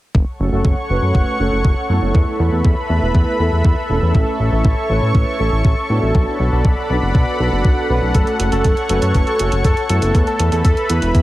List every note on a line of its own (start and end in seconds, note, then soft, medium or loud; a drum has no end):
0.15 0.25 F#1 medium
0.15 11.22 A4 medium
0.15 2.13 C#5 medium
0.15 2.13 F#5 medium
0.15 2.13 C#6 medium
0.15 kick loud
0.40 0.50 F#1 medium
0.40 0.50 A3 medium
0.40 0.50 C#4 medium
0.40 0.50 F#4 medium
0.40 0.50 A4 medium
0.52 0.62 F#1 medium
0.52 0.65 A3 medium
0.52 0.65 C#4 medium
0.52 0.65 F#4 medium
0.52 0.65 A4 medium
0.65 0.75 F#1 medium
0.65 kick loud
0.89 1.00 F#1 medium
0.89 1.37 A3 medium
0.89 1.37 C#4 medium
0.89 1.37 F#4 medium
0.89 1.37 B4 medium
1.02 1.12 F#2 medium
1.15 1.25 F#1 medium
1.15 kick loud
1.39 1.50 F#1 medium
1.39 1.61 A3 medium
1.39 1.61 C#4 medium
1.39 1.61 F#4 medium
1.39 1.61 A4 medium
1.52 1.63 F#1 medium
1.65 1.75 F#1 medium
1.65 kick loud
1.89 2.00 F#2 medium
1.89 2.37 A3 medium
1.89 2.37 B3 medium
1.89 2.37 E4 medium
1.89 2.37 A4 medium
2.02 2.12 F#1 medium
2.14 2.25 E2 loud
2.14 4.13 B4 medium
2.14 6.11 E5 medium
2.14 4.13 B5 medium
2.14 kick loud
2.40 2.50 E2 medium
2.40 2.50 A3 medium
2.40 2.50 B3 medium
2.40 2.50 E4 medium
2.40 2.50 A4 medium
2.52 2.62 E2 medium
2.52 2.65 A3 medium
2.52 2.65 B3 medium
2.52 2.65 E4 medium
2.52 2.65 A4 loud
2.65 2.75 E2 loud
2.65 kick loud
2.90 3.00 E2 medium
2.90 3.37 A3 medium
2.90 3.37 B3 medium
2.90 3.37 E4 medium
2.90 3.37 B4 medium
3.02 3.13 E1 medium
3.15 3.25 E2 loud
3.15 kick loud
3.40 3.50 E2 medium
3.40 3.61 A3 medium
3.40 3.61 B3 medium
3.40 3.61 E4 medium
3.40 3.61 A4 medium
3.52 3.63 E2 medium
3.65 3.75 E2 medium
3.65 kick loud
3.90 4.00 E1 medium
3.90 4.37 A3 medium
3.90 4.37 C#4 medium
3.90 4.37 E4 medium
3.90 4.37 A4 medium
4.02 4.12 E2 medium
4.14 4.25 A1 loud
4.14 6.13 C#5 medium
4.14 6.13 C#6 medium
4.14 kick loud
4.39 4.50 A1 medium
4.39 4.50 A3 medium
4.39 4.50 C#4 medium
4.39 4.50 E4 medium
4.39 4.50 A4 medium
4.52 4.63 A1 medium
4.52 4.65 A3 medium
4.52 4.65 C#4 medium
4.52 4.65 E4 medium
4.52 4.65 A4 medium
4.65 4.75 A1 medium
4.65 kick loud
4.90 5.00 A1 medium
4.90 5.37 A3 medium
4.90 5.37 C#4 medium
4.90 5.37 E4 medium
4.90 5.37 B4 medium
5.02 5.13 A2 medium
5.15 5.25 A1 loud
5.15 kick loud
5.40 5.50 A1 medium
5.40 5.61 A3 medium
5.40 5.61 C#4 medium
5.40 5.61 E4 medium
5.40 5.61 A4 medium
5.52 5.63 A1 medium
5.65 5.75 A1 loud
5.65 kick loud
5.90 6.00 A2 medium
5.90 6.37 B3 medium
5.90 6.37 D4 medium
5.90 6.37 F#4 medium
5.90 6.37 A4 medium
6.02 6.13 A1 medium
6.15 6.25 B1 loud
6.15 8.13 D5 medium
6.15 10.11 F#5 medium
6.15 8.13 B5 medium
6.15 kick loud
6.40 6.50 B1 medium
6.40 6.50 B3 medium
6.40 6.50 D4 medium
6.40 6.50 F#4 medium
6.40 6.50 A4 medium
6.52 6.63 B1 medium
6.52 6.65 B3 medium
6.52 6.65 D4 medium
6.52 6.65 F#4 medium
6.52 6.65 A4 medium
6.65 6.75 B1 medium
6.65 kick loud
6.90 7.00 B1 medium
6.90 7.37 B3 medium
6.90 7.37 D4 medium
6.90 7.37 F#4 medium
6.90 7.37 B4 medium
7.02 7.12 F#1 medium
7.15 7.25 B1 medium
7.15 kick loud
7.40 7.50 B1 medium
7.40 7.49 B3 medium
7.40 7.49 D4 medium
7.40 7.49 F#4 medium
7.40 7.49 A4 loud
7.52 7.62 F#1 medium
7.52 7.87 B3 medium
7.52 7.87 D4 medium
7.52 7.87 F#4 medium
7.52 7.87 A4 medium
7.65 7.75 B1 medium
7.65 kick loud
7.90 8.00 B1 medium
7.90 8.37 A3 medium
7.90 8.37 C#4 medium
7.90 8.37 F#4 medium
7.90 8.37 B4 medium
8.02 8.12 B1 medium
8.15 8.25 F#1 medium
8.15 8.43 A4 loud
8.15 10.13 C#5 medium
8.15 10.13 C#6 medium
8.15 kick loud
8.15 closed hi-hat soft
8.27 closed hi-hat soft
8.40 8.50 F#1 medium
8.40 8.50 A3 medium
8.40 8.50 C#4 medium
8.40 8.50 F#4 medium
8.40 8.50 A4 medium
8.40 closed hi-hat medium
8.52 8.63 F#1 medium
8.52 8.65 A3 medium
8.52 8.65 C#4 medium
8.52 8.65 F#4 medium
8.52 8.81 A4 medium
8.52 8.65 A4 medium
8.52 closed hi-hat soft
8.64 8.75 F#1 medium
8.64 kick loud
8.64 closed hi-hat soft
8.77 closed hi-hat soft
8.89 9.00 F#1 medium
8.89 9.37 A3 medium
8.89 9.37 C#4 medium
8.89 9.37 F#4 medium
8.89 9.18 A4 medium
8.89 9.37 B4 medium
8.89 closed hi-hat medium
9.02 9.13 F#2 medium
9.02 closed hi-hat soft
9.15 9.25 F#1 medium
9.15 kick loud
9.15 closed hi-hat soft
9.27 9.56 A4 medium
9.27 closed hi-hat soft
9.39 9.50 F#1 medium
9.39 9.61 A3 medium
9.39 9.61 C#4 medium
9.39 9.61 F#4 medium
9.39 9.61 A4 medium
9.39 closed hi-hat medium
9.52 9.63 F#1 medium
9.52 closed hi-hat soft
9.64 9.75 F#1 medium
9.64 9.84 A4 medium
9.64 kick loud
9.64 closed hi-hat soft
9.77 closed hi-hat soft
9.90 10.00 F#2 medium
9.90 10.37 A3 medium
9.90 10.37 B3 medium
9.90 10.37 E4 medium
9.90 10.18 A4 medium
9.90 10.37 A4 loud
9.90 closed hi-hat medium
10.02 10.13 F#1 medium
10.02 closed hi-hat soft
10.15 10.25 E2 medium
10.15 11.22 B4 medium
10.15 11.22 E5 medium
10.15 11.22 B5 medium
10.15 kick loud
10.15 closed hi-hat soft
10.27 10.56 A4 medium
10.27 closed hi-hat soft
10.39 10.50 E2 medium
10.39 10.50 A3 medium
10.39 10.50 B3 medium
10.39 10.50 E4 medium
10.39 10.50 A4 medium
10.39 closed hi-hat medium
10.52 10.63 E2 medium
10.52 10.65 A3 medium
10.52 10.65 B3 medium
10.52 10.65 E4 medium
10.52 10.65 A4 medium
10.52 closed hi-hat soft
10.65 10.75 E2 medium
10.65 10.93 A4 medium
10.65 kick loud
10.65 closed hi-hat soft
10.77 closed hi-hat soft
10.90 11.00 E2 medium
10.90 11.22 A3 medium
10.90 11.22 B3 medium
10.90 11.22 E4 medium
10.90 11.22 B4 medium
10.90 closed hi-hat medium
11.02 11.13 E1 medium
11.02 closed hi-hat soft
11.15 11.22 E2 loud
11.15 kick loud
11.15 closed hi-hat soft